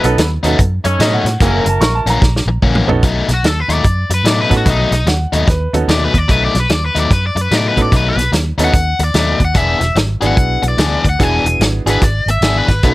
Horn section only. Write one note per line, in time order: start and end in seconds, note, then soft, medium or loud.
0.00 0.29 B3 medium
0.00 0.28 D#4 medium
0.00 0.29 A4 medium
0.00 0.29 B4 loud
0.84 1.31 C#4 medium
0.84 1.31 D#4 medium
0.84 1.31 A4 medium
0.84 1.31 C#5 loud
1.40 2.10 A#3 medium
1.40 2.10 E4 medium
1.40 2.10 F#4 medium
1.40 2.10 A#4 medium